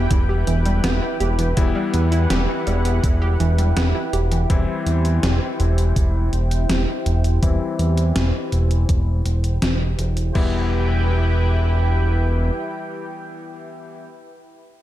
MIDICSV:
0, 0, Header, 1, 7, 480
1, 0, Start_track
1, 0, Key_signature, 1, "minor"
1, 0, Tempo, 731707
1, 1031, Time_signature, 4, 2, 24, 8
1, 9723, End_track
2, 0, Start_track
2, 0, Title_t, "Analog synth pad"
2, 0, Program_c, 0, 89
2, 0, Note_on_c, 0, 64, 78
2, 0, Note_on_c, 0, 67, 71
2, 0, Note_on_c, 0, 71, 73
2, 0, Note_on_c, 0, 79, 92
2, 1012, Note_off_c, 0, 79, 0
2, 1031, Note_on_c, 0, 78, 91
2, 2925, Note_off_c, 0, 71, 0
2, 2931, Note_off_c, 0, 78, 0
2, 2952, Note_on_c, 0, 72, 72
2, 2953, Note_on_c, 0, 79, 83
2, 6764, Note_off_c, 0, 67, 0
2, 6765, Note_off_c, 0, 64, 0
2, 6765, Note_off_c, 0, 72, 0
2, 6765, Note_off_c, 0, 79, 0
2, 6792, Note_on_c, 0, 64, 80
2, 6792, Note_on_c, 0, 71, 67
2, 6792, Note_on_c, 0, 79, 86
2, 6793, Note_on_c, 0, 67, 70
2, 9210, Note_off_c, 0, 64, 0
2, 9210, Note_off_c, 0, 67, 0
2, 9210, Note_off_c, 0, 71, 0
2, 9210, Note_off_c, 0, 79, 0
2, 9723, End_track
3, 0, Start_track
3, 0, Title_t, "Synth arpeggio sound"
3, 0, Program_c, 1, 84
3, 69, Note_on_c, 1, 64, 81
3, 134, Note_off_c, 1, 64, 0
3, 190, Note_on_c, 1, 67, 101
3, 297, Note_off_c, 1, 67, 0
3, 310, Note_on_c, 1, 52, 74
3, 417, Note_off_c, 1, 52, 0
3, 430, Note_on_c, 1, 55, 79
3, 544, Note_off_c, 1, 55, 0
3, 549, Note_on_c, 1, 59, 104
3, 614, Note_off_c, 1, 59, 0
3, 669, Note_on_c, 1, 64, 79
3, 776, Note_off_c, 1, 64, 0
3, 789, Note_on_c, 1, 67, 76
3, 896, Note_off_c, 1, 67, 0
3, 910, Note_on_c, 1, 52, 77
3, 974, Note_off_c, 1, 52, 0
3, 1031, Note_on_c, 1, 52, 81
3, 1137, Note_off_c, 1, 52, 0
3, 1150, Note_on_c, 1, 55, 101
3, 1257, Note_off_c, 1, 55, 0
3, 1269, Note_on_c, 1, 59, 78
3, 1334, Note_off_c, 1, 59, 0
3, 1390, Note_on_c, 1, 64, 102
3, 1454, Note_off_c, 1, 64, 0
3, 1511, Note_on_c, 1, 67, 100
3, 1574, Note_off_c, 1, 67, 0
3, 1631, Note_on_c, 1, 52, 76
3, 1737, Note_off_c, 1, 52, 0
3, 1751, Note_on_c, 1, 55, 73
3, 1857, Note_off_c, 1, 55, 0
3, 1870, Note_on_c, 1, 59, 78
3, 1934, Note_off_c, 1, 59, 0
3, 1990, Note_on_c, 1, 64, 80
3, 2054, Note_off_c, 1, 64, 0
3, 2110, Note_on_c, 1, 67, 105
3, 2217, Note_off_c, 1, 67, 0
3, 2231, Note_on_c, 1, 52, 75
3, 2337, Note_off_c, 1, 52, 0
3, 2351, Note_on_c, 1, 55, 75
3, 2464, Note_off_c, 1, 55, 0
3, 2470, Note_on_c, 1, 59, 101
3, 2534, Note_off_c, 1, 59, 0
3, 2590, Note_on_c, 1, 64, 74
3, 2697, Note_off_c, 1, 64, 0
3, 2711, Note_on_c, 1, 67, 75
3, 2817, Note_off_c, 1, 67, 0
3, 2832, Note_on_c, 1, 52, 71
3, 2895, Note_off_c, 1, 52, 0
3, 9723, End_track
4, 0, Start_track
4, 0, Title_t, "Electric grand piano"
4, 0, Program_c, 2, 2
4, 0, Note_on_c, 2, 52, 80
4, 0, Note_on_c, 2, 55, 76
4, 0, Note_on_c, 2, 59, 76
4, 0, Note_on_c, 2, 64, 93
4, 282, Note_off_c, 2, 52, 0
4, 282, Note_off_c, 2, 55, 0
4, 282, Note_off_c, 2, 59, 0
4, 282, Note_off_c, 2, 64, 0
4, 1030, Note_on_c, 2, 59, 74
4, 1030, Note_on_c, 2, 64, 92
4, 1031, Note_on_c, 2, 52, 83
4, 1031, Note_on_c, 2, 55, 77
4, 2201, Note_off_c, 2, 64, 0
4, 2202, Note_off_c, 2, 52, 0
4, 2202, Note_off_c, 2, 55, 0
4, 2202, Note_off_c, 2, 59, 0
4, 2951, Note_on_c, 2, 55, 73
4, 2951, Note_on_c, 2, 60, 75
4, 2951, Note_on_c, 2, 64, 85
4, 2952, Note_on_c, 2, 52, 82
4, 4122, Note_off_c, 2, 52, 0
4, 4122, Note_off_c, 2, 55, 0
4, 4122, Note_off_c, 2, 60, 0
4, 4122, Note_off_c, 2, 64, 0
4, 4871, Note_on_c, 2, 52, 78
4, 4871, Note_on_c, 2, 55, 70
4, 4871, Note_on_c, 2, 60, 72
4, 4871, Note_on_c, 2, 64, 90
4, 6042, Note_off_c, 2, 52, 0
4, 6042, Note_off_c, 2, 55, 0
4, 6042, Note_off_c, 2, 60, 0
4, 6042, Note_off_c, 2, 64, 0
4, 6791, Note_on_c, 2, 52, 77
4, 6791, Note_on_c, 2, 59, 72
4, 6791, Note_on_c, 2, 64, 87
4, 6792, Note_on_c, 2, 55, 72
4, 9209, Note_off_c, 2, 52, 0
4, 9209, Note_off_c, 2, 59, 0
4, 9209, Note_off_c, 2, 64, 0
4, 9210, Note_off_c, 2, 55, 0
4, 9723, End_track
5, 0, Start_track
5, 0, Title_t, "Analog synth bass"
5, 0, Program_c, 3, 38
5, 71, Note_on_c, 3, 28, 100
5, 288, Note_off_c, 3, 28, 0
5, 310, Note_on_c, 3, 28, 81
5, 528, Note_off_c, 3, 28, 0
5, 550, Note_on_c, 3, 28, 77
5, 659, Note_off_c, 3, 28, 0
5, 790, Note_on_c, 3, 28, 80
5, 1008, Note_off_c, 3, 28, 0
5, 1031, Note_on_c, 3, 28, 95
5, 1139, Note_off_c, 3, 28, 0
5, 1271, Note_on_c, 3, 40, 80
5, 1488, Note_off_c, 3, 40, 0
5, 1510, Note_on_c, 3, 28, 99
5, 1619, Note_off_c, 3, 28, 0
5, 1751, Note_on_c, 3, 28, 80
5, 1968, Note_off_c, 3, 28, 0
5, 1991, Note_on_c, 3, 28, 94
5, 2208, Note_off_c, 3, 28, 0
5, 2230, Note_on_c, 3, 28, 80
5, 2448, Note_off_c, 3, 28, 0
5, 2472, Note_on_c, 3, 28, 83
5, 2580, Note_off_c, 3, 28, 0
5, 2711, Note_on_c, 3, 28, 80
5, 2929, Note_off_c, 3, 28, 0
5, 2951, Note_on_c, 3, 28, 97
5, 3060, Note_off_c, 3, 28, 0
5, 3191, Note_on_c, 3, 40, 82
5, 3409, Note_off_c, 3, 40, 0
5, 3431, Note_on_c, 3, 28, 94
5, 3540, Note_off_c, 3, 28, 0
5, 3671, Note_on_c, 3, 28, 81
5, 3888, Note_off_c, 3, 28, 0
5, 3911, Note_on_c, 3, 28, 98
5, 4128, Note_off_c, 3, 28, 0
5, 4152, Note_on_c, 3, 28, 82
5, 4369, Note_off_c, 3, 28, 0
5, 4392, Note_on_c, 3, 28, 75
5, 4500, Note_off_c, 3, 28, 0
5, 4633, Note_on_c, 3, 28, 81
5, 4849, Note_off_c, 3, 28, 0
5, 4871, Note_on_c, 3, 28, 93
5, 4980, Note_off_c, 3, 28, 0
5, 5111, Note_on_c, 3, 40, 80
5, 5328, Note_off_c, 3, 40, 0
5, 5351, Note_on_c, 3, 28, 98
5, 5459, Note_off_c, 3, 28, 0
5, 5592, Note_on_c, 3, 28, 75
5, 5809, Note_off_c, 3, 28, 0
5, 5831, Note_on_c, 3, 28, 100
5, 6049, Note_off_c, 3, 28, 0
5, 6071, Note_on_c, 3, 28, 77
5, 6289, Note_off_c, 3, 28, 0
5, 6313, Note_on_c, 3, 28, 84
5, 6529, Note_off_c, 3, 28, 0
5, 6551, Note_on_c, 3, 28, 87
5, 6768, Note_off_c, 3, 28, 0
5, 6791, Note_on_c, 3, 28, 93
5, 8204, Note_off_c, 3, 28, 0
5, 9723, End_track
6, 0, Start_track
6, 0, Title_t, "Impact"
6, 0, Program_c, 4, 103
6, 0, Note_on_c, 4, 60, 69
6, 1031, Note_off_c, 4, 60, 0
6, 9723, End_track
7, 0, Start_track
7, 0, Title_t, "Drums"
7, 69, Note_on_c, 9, 42, 97
7, 71, Note_on_c, 9, 36, 109
7, 135, Note_off_c, 9, 42, 0
7, 136, Note_off_c, 9, 36, 0
7, 310, Note_on_c, 9, 42, 67
7, 375, Note_off_c, 9, 42, 0
7, 430, Note_on_c, 9, 42, 63
7, 495, Note_off_c, 9, 42, 0
7, 550, Note_on_c, 9, 38, 114
7, 550, Note_on_c, 9, 42, 93
7, 615, Note_off_c, 9, 38, 0
7, 615, Note_off_c, 9, 42, 0
7, 790, Note_on_c, 9, 42, 70
7, 856, Note_off_c, 9, 42, 0
7, 910, Note_on_c, 9, 42, 68
7, 976, Note_off_c, 9, 42, 0
7, 1029, Note_on_c, 9, 42, 97
7, 1031, Note_on_c, 9, 36, 115
7, 1095, Note_off_c, 9, 42, 0
7, 1097, Note_off_c, 9, 36, 0
7, 1270, Note_on_c, 9, 42, 69
7, 1336, Note_off_c, 9, 42, 0
7, 1391, Note_on_c, 9, 42, 68
7, 1456, Note_off_c, 9, 42, 0
7, 1511, Note_on_c, 9, 38, 119
7, 1511, Note_on_c, 9, 42, 99
7, 1576, Note_off_c, 9, 38, 0
7, 1576, Note_off_c, 9, 42, 0
7, 1751, Note_on_c, 9, 42, 65
7, 1816, Note_off_c, 9, 42, 0
7, 1870, Note_on_c, 9, 42, 68
7, 1936, Note_off_c, 9, 42, 0
7, 1992, Note_on_c, 9, 36, 117
7, 1992, Note_on_c, 9, 42, 92
7, 2057, Note_off_c, 9, 36, 0
7, 2057, Note_off_c, 9, 42, 0
7, 2231, Note_on_c, 9, 42, 67
7, 2297, Note_off_c, 9, 42, 0
7, 2352, Note_on_c, 9, 42, 65
7, 2417, Note_off_c, 9, 42, 0
7, 2471, Note_on_c, 9, 38, 115
7, 2471, Note_on_c, 9, 42, 92
7, 2536, Note_off_c, 9, 38, 0
7, 2536, Note_off_c, 9, 42, 0
7, 2712, Note_on_c, 9, 42, 72
7, 2777, Note_off_c, 9, 42, 0
7, 2831, Note_on_c, 9, 42, 67
7, 2897, Note_off_c, 9, 42, 0
7, 2952, Note_on_c, 9, 36, 113
7, 2952, Note_on_c, 9, 42, 88
7, 3017, Note_off_c, 9, 36, 0
7, 3017, Note_off_c, 9, 42, 0
7, 3192, Note_on_c, 9, 42, 62
7, 3257, Note_off_c, 9, 42, 0
7, 3313, Note_on_c, 9, 42, 63
7, 3378, Note_off_c, 9, 42, 0
7, 3432, Note_on_c, 9, 38, 119
7, 3432, Note_on_c, 9, 42, 88
7, 3498, Note_off_c, 9, 38, 0
7, 3498, Note_off_c, 9, 42, 0
7, 3672, Note_on_c, 9, 42, 64
7, 3738, Note_off_c, 9, 42, 0
7, 3792, Note_on_c, 9, 42, 63
7, 3858, Note_off_c, 9, 42, 0
7, 3912, Note_on_c, 9, 36, 115
7, 3912, Note_on_c, 9, 42, 86
7, 3978, Note_off_c, 9, 36, 0
7, 3978, Note_off_c, 9, 42, 0
7, 4152, Note_on_c, 9, 42, 64
7, 4217, Note_off_c, 9, 42, 0
7, 4273, Note_on_c, 9, 42, 65
7, 4339, Note_off_c, 9, 42, 0
7, 4392, Note_on_c, 9, 38, 116
7, 4392, Note_on_c, 9, 42, 90
7, 4458, Note_off_c, 9, 38, 0
7, 4458, Note_off_c, 9, 42, 0
7, 4633, Note_on_c, 9, 42, 67
7, 4698, Note_off_c, 9, 42, 0
7, 4752, Note_on_c, 9, 42, 62
7, 4818, Note_off_c, 9, 42, 0
7, 4871, Note_on_c, 9, 42, 85
7, 4872, Note_on_c, 9, 36, 114
7, 4937, Note_off_c, 9, 36, 0
7, 4937, Note_off_c, 9, 42, 0
7, 5112, Note_on_c, 9, 42, 60
7, 5178, Note_off_c, 9, 42, 0
7, 5231, Note_on_c, 9, 42, 62
7, 5297, Note_off_c, 9, 42, 0
7, 5351, Note_on_c, 9, 38, 115
7, 5351, Note_on_c, 9, 42, 86
7, 5417, Note_off_c, 9, 38, 0
7, 5417, Note_off_c, 9, 42, 0
7, 5591, Note_on_c, 9, 42, 59
7, 5657, Note_off_c, 9, 42, 0
7, 5712, Note_on_c, 9, 42, 60
7, 5778, Note_off_c, 9, 42, 0
7, 5831, Note_on_c, 9, 36, 112
7, 5832, Note_on_c, 9, 42, 87
7, 5897, Note_off_c, 9, 36, 0
7, 5897, Note_off_c, 9, 42, 0
7, 6071, Note_on_c, 9, 42, 61
7, 6137, Note_off_c, 9, 42, 0
7, 6192, Note_on_c, 9, 42, 58
7, 6258, Note_off_c, 9, 42, 0
7, 6311, Note_on_c, 9, 38, 115
7, 6311, Note_on_c, 9, 42, 84
7, 6377, Note_off_c, 9, 38, 0
7, 6377, Note_off_c, 9, 42, 0
7, 6551, Note_on_c, 9, 42, 65
7, 6617, Note_off_c, 9, 42, 0
7, 6670, Note_on_c, 9, 42, 61
7, 6736, Note_off_c, 9, 42, 0
7, 6790, Note_on_c, 9, 49, 79
7, 6791, Note_on_c, 9, 36, 89
7, 6856, Note_off_c, 9, 49, 0
7, 6857, Note_off_c, 9, 36, 0
7, 9723, End_track
0, 0, End_of_file